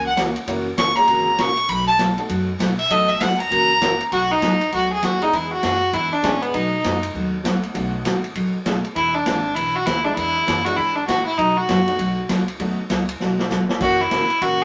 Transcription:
Already playing: C#2
0.07 F#5
0.17 C#3 E3 A#3 C#4 E4 F#4 A#4, kick, snare, hi-hat pedal, ride
0.36 ride
0.47 F#1 C#3 E3 A#3 C#4 E4 F#4 A#4, kick, ride
0.77 F#1 C#3 E3 A#3 C#4 F#4 C#6, kick, snare, hi-hat pedal, ride
0.96 A#3 C#4 E4 F#4 G#4 A#5, ride
1.08 G#1 C#3 E3 A#3 C#4 F#4, kick, ride
1.38 A#1 C#3 E3 A#3 C#4 F#4 C#6, kick, snare, hi-hat pedal, ride
1.57 ride
1.68 B1 B2 F#3 A3 D#4 F#4 B5, kick, ride
1.87 A5
1.98 B2 F#3 A3 D#4 F#4, kick, snare, hi-hat pedal, ride
2.17 A3 B3 D#4 F#4 A4, ride
2.29 F#2 B2 F#3 A3 D#4 F#4, kick, ride
2.59 B1 B2 F#3 A3 D#4 F#4, kick, snare, hi-hat pedal, ride
2.79 E5, ride
2.90 A1 B2 F#3 A3 B3 D#4 F#4 A4 D#5, kick, ride
3.09 E5
3.20 G#1 B2 F#3 A3 D#4 F#4 F#5, kick, snare, hi-hat pedal, ride
3.40 A#5, ride
3.50 F#1 C#3 E3 A#3 C#4 F#4, kick, ride
3.81 C#3 E3 A#3 C#4 E4 F#4 A#4, kick, snare, hi-hat pedal, ride
4.01 ride
4.12 B1 B2 F#3 A3 D#4 F#4, kick, ride
4.32 D#4
4.42 A1 B2 F#3 A3 D#4 F#4, kick, snare, hi-hat pedal, ride
4.61 ride
4.72 C#2 B2 F#3 A3 D#4 F#4, kick, ride
4.93 G#4
5.02 D#2 B2 F#3 A3 D#4 F#4, kick, snare, hi-hat pedal, ride
5.21 G#3 B3 D4 D#4 E4 G#4, ride
5.33 E2 E3 B3 D4 E4 G#4, kick, ride
5.53 F#4
5.63 F#2 E3 B3 D4 G#4, kick, snare, hi-hat pedal, ride
5.93 G#2 E3 B3 D4 E4 G#4, kick, ride
6.13 D4, muted upright bass stroke
6.23 A2 E3 G#3 B3 C#4 D4 E4 G#4, kick, snare, hi-hat pedal, ride
6.42 B3, ride
6.54 B2 F#3 A3 D#4 F#4, kick, ride
6.84 F#2 B2 F#3 A3 D#4 F#4, kick, snare, hi-hat pedal, ride
7.03 ride
7.15 D#2 B2 F#3 A3 D#4 F#4, kick
7.43 C#2 B2 F#3 A3 B3 D#4 F#4, kick, snare, hi-hat pedal, ride
7.63 ride
7.74 B1 B2 F#3 A3 B3 D#4 F#4, kick, ride
8.05 G#1 B2 F#3 A3 D#4 F#4, kick, snare, hi-hat pedal, ride
8.24 ride
8.35 A1 B2 F#3 A3 D#4 F#4, kick, ride
8.54 muted upright bass stroke
8.65 B1 B2 F#3 A3 B3 D#4 F#4 G#4, kick, snare, hi-hat pedal, ride
8.85 muted upright bass stroke, ride
8.96 E1 E3 B3 D4 E4 G#4, kick, ride
9.15 D4
9.26 G#1 E3 B3 D4 G#4, kick, snare, hi-hat pedal, ride
9.55 B1 E3 B3 D4 E4 G#4, kick, ride
9.75 F#4
9.86 D2 E3 B3 D4 E4 G#4, kick, snare, hi-hat pedal, ride
10.04 E3 G#3 B3 D4 E4
10.15 E2 E3 B3 D4 E4 G#4, kick, ride
10.47 F#2 E3 B3 D4 G#4, kick, snare, hi-hat pedal, ride
10.65 E3 G#3 B3 D4 E4 F#4, ride
10.76 G#2 E3 B3 D4 E4 G#4, kick
10.95 D4
11.07 A2 E3 B3 D4 F#4 G#4, kick, snare, hi-hat pedal, ride
11.26 E4
11.37 B2 F#3 A3 D#4 F#4, kick, ride
11.57 F#4
11.68 F#2 B2 F#3 A3 D#4 F#4, kick, snare, hi-hat pedal, ride
11.87 F#3 A3 B3 D#4 F#4, ride
11.98 B1 B2 F#3 A3 D#4 F#4, kick, ride
12.29 C#2 B2 F#3 A3 D#4 F#4, kick, snare, hi-hat pedal, ride
12.48 ride
12.60 D#2 B2 F#3 A3 B3 D#4 F#4, kick, ride
12.79 muted upright bass stroke
12.89 C#2 B2 F#3 A3 D#4 F#4, kick, snare, hi-hat pedal, ride
13.09 ride
13.20 B1 B2 F#3 A3 D#4 F#4, snare
13.39 snare
13.50 G#1 B2 F#3 A3 D#4 F#4, snare, hi-hat pedal
13.69 snare
13.80 F#1 C#3 E3 F#3 A#3 C#4 E4 F#4, kick, crash
14.01 E4
14.11 G#1 C#3 E3 A#3 C#4 F#4, kick, snare, hi-hat pedal, ride
14.30 muted upright bass stroke, ride
14.41 A#1 C#3 E3 A#3 C#4 F#4, kick, ride

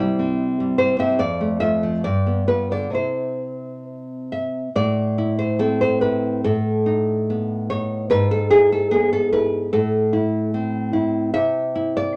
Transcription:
Already playing: C3 D5
0.00 G3 E4
0.19 C4
0.60 G3
0.78 G3 E4 C5
0.99 C4 E5
1.19 F2 D5
1.41 A3
1.60 A3 F4 E5
1.83 F3
2.04 G2 D5
2.27 B3
2.47 B3 F4 B4
2.71 D3 D5
2.90 C3 C4 E4
2.95 C5
4.32 E5
4.75 A2 D5
5.18 E4
5.39 C5
5.59 C4 A4
5.81 C5
6.01 E4 B4
6.44 A2 A4
6.86 D#4
7.30 B3
7.70 D#4 C#5
8.10 G#2 B4
8.31 A4
8.50 E4 G#4
8.72 A4
8.91 B3 G#4
9.13 A4
9.33 E4 B4
9.73 A2 A4
10.13 E4
10.54 C4
10.93 E4
11.34 C3 E5
11.75 E4
11.97 D5

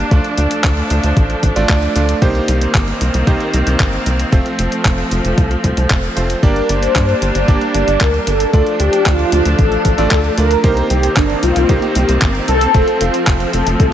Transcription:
Already playing: D4
0.11 D2 F3 A3 D4 F4 D5, kick, closed hi-hat
0.24 closed hi-hat
0.38 D2, closed hi-hat
0.51 closed hi-hat
0.64 D2, kick, clap, closed hi-hat
0.77 closed hi-hat
0.90 D2, closed hi-hat
1.03 D2, closed hi-hat
1.17 A1, kick, closed hi-hat
1.30 closed hi-hat
1.43 A1, kick, closed hi-hat
1.56 A1 A3 D4 F4 D5, closed hi-hat
1.69 D2, kick, clap, closed hi-hat
1.82 closed hi-hat
1.96 D2 A3 D4 F4 D5, closed hi-hat
2.09 closed hi-hat
2.22 C2 D#3 A#3 C4 D#4 G4 C5, kick, closed hi-hat
2.35 closed hi-hat
2.48 C2, closed hi-hat
2.61 closed hi-hat
2.75 G1, kick, clap, closed hi-hat
2.88 closed hi-hat
3.01 C2, closed hi-hat
3.14 C2, closed hi-hat
3.27 C2 A#3 D#4 G4 C5, kick, closed hi-hat
3.40 closed hi-hat
3.54 C2, closed hi-hat
3.67 C2, closed hi-hat
3.80 G1, kick, clap, closed hi-hat
3.93 closed hi-hat
4.06 C2, closed hi-hat
4.19 closed hi-hat
4.32 F1 F3 A3 C4 F4 C5, kick, closed hi-hat
4.46 closed hi-hat
4.59 F1, closed hi-hat
4.72 closed hi-hat
4.85 F1, kick, clap, closed hi-hat
4.98 closed hi-hat
5.11 F1, closed hi-hat
5.24 F1, closed hi-hat
5.38 C2, kick, closed hi-hat
5.51 closed hi-hat
5.64 C2, kick, closed hi-hat
5.77 C2, closed hi-hat
5.90 F1, kick, clap, closed hi-hat
6.04 closed hi-hat
6.17 F1 A3 C4 F4 C5, closed hi-hat
6.30 closed hi-hat
6.43 G1 G3 A#3 D4 G4 A#4 D5, kick, closed hi-hat
6.56 closed hi-hat
6.69 G1 C5, closed hi-hat
6.83 closed hi-hat
6.96 G2, kick, clap, closed hi-hat
7.09 closed hi-hat
7.22 G1, closed hi-hat
7.35 G1, closed hi-hat
7.48 G1 A#3 D4 G4 D5, kick, closed hi-hat
7.61 closed hi-hat
7.74 G1, closed hi-hat
7.88 G1, closed hi-hat
8.01 D2 A#4, kick, clap, closed hi-hat
8.14 closed hi-hat
8.27 G1 A4, closed hi-hat
8.40 closed hi-hat
8.53 D2 F3 A3 D4 F4 D5, kick, closed hi-hat
8.66 closed hi-hat
8.80 D2 G4, closed hi-hat
8.93 closed hi-hat
9.06 D2 F4, kick, clap, closed hi-hat
9.19 closed hi-hat
9.32 D2, closed hi-hat
9.45 D2, closed hi-hat
9.59 A1 A4, kick, closed hi-hat
9.72 closed hi-hat
9.85 A1, kick, closed hi-hat
9.98 A1 A3 D4 F4 D5, closed hi-hat
10.11 D2, kick, clap, closed hi-hat
10.24 closed hi-hat
10.38 D2 A3 D4 F4 A#4 D5, closed hi-hat
10.51 closed hi-hat
10.64 C2 D#3 A#3 C4 D#4 G4 C5, kick, closed hi-hat
10.77 closed hi-hat
10.90 C2 G4, closed hi-hat
11.03 closed hi-hat
11.16 G1 D4, kick, clap, closed hi-hat
11.30 closed hi-hat
11.43 C2 F4, closed hi-hat
11.56 C2, closed hi-hat
11.69 C2 A#3 D#4 G4 C5, kick, closed hi-hat
11.82 closed hi-hat
11.95 C2, closed hi-hat
12.09 C2, closed hi-hat
12.22 G1, kick, clap, closed hi-hat
12.35 closed hi-hat
12.48 C2 A4, closed hi-hat
12.61 closed hi-hat
12.74 F1 F3 A3 C4 F4 C5, kick, closed hi-hat
12.88 closed hi-hat
13.00 F1 F4, closed hi-hat
13.14 closed hi-hat
13.27 F1, kick, clap, closed hi-hat
13.40 closed hi-hat
13.53 F1 A4, closed hi-hat
13.66 F1, closed hi-hat
13.80 C2, kick, closed hi-hat

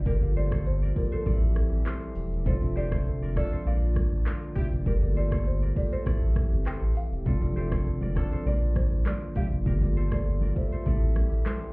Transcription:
Already playing: D3 F4
0.05 G1 F3 G3 A#3 F4 G4 A4 A#4 D5, kick, shaker
0.21 A#3 F4 G4 A4 F5, shaker
0.37 A4 C5 D5, shaker
0.52 A4 C5, kick, cross-stick, shaker
0.66 C5, shaker
0.82 A#4 D5, shaker
0.95 A#3 F4 G4 A4 A#4 D5, kick, shaker
1.12 A4 C5, shaker
1.25 A1 E3 C4 E4 G4 A4 D5, kick, shaker
1.34 E5
1.42 shaker
1.56 cross-stick, shaker
1.72 A1, shaker
1.86 A4 C5, cross-stick, clap, shaker
2.02 shaker
2.15 E1, open hi-hat, shaker
2.33 shaker
2.45 F1 D3 F3 C4 D4 F4 A4 C5 D5, kick, shaker
2.60 C4 D4 F4 A4 E5, shaker
2.76 C4 E4 G4 A4 C5 D5, shaker
2.92 A4 C5, kick, cross-stick, shaker
3.06 shaker
3.22 A#4 D5, shaker
3.35 C4 D4 F4 A4 D5, kick, cross-stick, shaker
3.52 A4 C5, shaker
3.65 A#1 F3 A#3 D4 F4 A#4 D5 F5, shaker
3.82 shaker
3.96 kick, cross-stick, shaker
4.12 A1, shaker
4.26 F4 A#4, cross-stick, clap, shaker
4.42 shaker
4.55 F1 C4 E4 G4, kick, open hi-hat, shaker
4.73 shaker
4.85 G1 G3 A#3 F4 G4 A4 A#4 D5, kick, shaker
5.01 A3 F4 G4 A4 D5, shaker
5.07 A#3
5.17 A4 C5 D5, shaker
5.32 A4 C5, kick, cross-stick, shaker
5.46 C5, shaker
5.62 A#4 D5, shaker
5.75 A#3 F4 G4 A4 C5 D5, kick, open hi-hat, shaker
5.92 A4 C5, shaker
6.05 A1 E3 C4 E4 G4 A4 D5 E5, kick, cross-stick, shaker
6.22 A1, shaker
6.36 kick, cross-stick, shaker
6.52 G1, shaker
6.66 A4 C5 G5, cross-stick, clap, shaker
6.82 A1, shaker
6.95 F5, open hi-hat, shaker
7.12 E1, shaker
7.25 F1 D3 F3 C4 D4 F4 A4 D5, kick, low conga, shaker
7.40 C4 D4 F4 A4 D5, high conga, shaker
7.56 C4 E4 G4 A4 C5, shaker
7.72 A4 C5, kick, cross-stick, shaker
7.86 shaker
8.01 A#4 D5, high conga, shaker
8.15 C4 D4 F4 A4 D5, kick, cross-stick, shaker
8.32 A4 C5, shaker
8.45 A#1 A#3 D4 F4 A#4 D5, low conga, shaker
8.62 shaker
8.76 C5, kick, cross-stick, high conga, shaker
8.92 A1, shaker
9.06 F4 A#4 D5, cross-stick, clap, high conga, shaker
9.22 shaker
9.35 F1 C4 E4 G4 F5, kick, open hi-hat, high conga, shaker
9.53 shaker
9.65 G1 D3 G3 A#3 F4 G4 A4 A#4 D5, kick, low conga, shaker
9.81 A#3 F4 G4 A4 D5, high conga, shaker
9.97 A4 C5, shaker
10.12 A4 C5 D5, kick, cross-stick, shaker
10.26 shaker
10.41 A#4 D5, high conga, shaker
10.55 A#3 F4 G4 A4 C5 E5, kick, shaker
10.72 A4 C5, shaker
10.85 A1 E3 C4 E4 G4 A4 D5 E5, kick, low conga, shaker
11.02 shaker
11.16 cross-stick, high conga, shaker
11.32 A1, shaker
11.46 A4 C5, cross-stick, clap, high conga, shaker
11.62 shaker

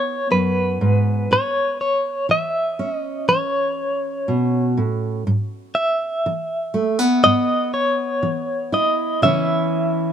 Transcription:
Already playing: B2 B3 E4 C#5
0.31 F#2 B4
0.81 G#2
1.31 A2 C#5
1.81 C#5
2.29 E3 E5
2.79 C#4
2.94 D#5
3.28 E3 C#5
4.28 B2
4.77 A2
5.27 G#2
5.75 E5
6.26 E3
6.74 A3
6.99 B3
7.24 G#2 D#5
7.74 C#5
8.23 E3
8.72 E4 D#5
9.22 C#3 E3 C#4 E4 E5

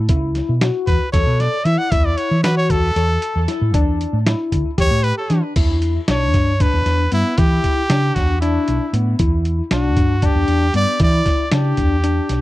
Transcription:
Already playing: A2
0.09 C#2 E4, kick, closed hi-hat
0.35 snare, closed hi-hat
0.49 B2
0.61 F#4, snare, closed hi-hat
0.86 E2 B4, kick, closed hi-hat
1.12 E2 A4 C#5, kick, snare, closed hi-hat
1.27 B2
1.40 D5, snare, closed hi-hat
1.65 E3 E4 E5, closed hi-hat
1.78 F#5
1.91 E2 E4 E5, kick, closed hi-hat
2.05 D5
2.17 C#5, closed hi-hat
2.31 E3
2.44 F#4 B4, snare, closed hi-hat
2.57 C#5
2.70 E2 A4, kick, closed hi-hat
2.96 E2 A4, closed hi-hat
3.22 closed hi-hat
3.36 E2
3.48 E4, snare, closed hi-hat
3.61 A2
3.74 E2 D4, kick, closed hi-hat
4.01 closed hi-hat
4.13 A2
4.26 E4, snare, closed hi-hat
4.52 D2, kick, closed hi-hat
4.78 E2 G4 C#5, kick, snare, closed hi-hat
4.91 A2
5.04 B4, closed hi-hat
5.18 A4
5.30 E3 D4, snare, closed hi-hat
5.56 E2 E4, kick, closed hi-hat, crash
5.82 closed hi-hat
6.08 B1 D4 C#5, snare, closed hi-hat
6.34 G2, kick, snare, closed hi-hat
6.60 D4 B4, kick, closed hi-hat
6.73 E2
6.86 E2, snare, closed hi-hat
7.12 G2 B3 E4, closed hi-hat
7.38 E3 E4 G4, kick, closed hi-hat
7.64 kick, closed hi-hat
7.90 C#3 D4, snare, closed hi-hat
8.15 E2 F#4, kick, snare, closed hi-hat
8.41 D4 E4, closed hi-hat
8.68 B1, closed hi-hat
8.93 A2 B3, closed hi-hat
9.19 E2 E4, kick, closed hi-hat
9.45 closed hi-hat
9.71 B1 D4 F#4, snare, closed hi-hat
9.97 G2, kick, closed hi-hat
10.22 D4 G4, kick, closed hi-hat
10.35 E2
10.48 E2, closed hi-hat
10.74 G2 B3 D5, closed hi-hat
11.00 E3 E4 D5, kick, closed hi-hat
11.26 kick, snare, closed hi-hat
11.51 C#3 D4 G4, snare, closed hi-hat
11.77 E2, kick, closed hi-hat
12.04 D4, closed hi-hat
12.29 B1, snare, closed hi-hat

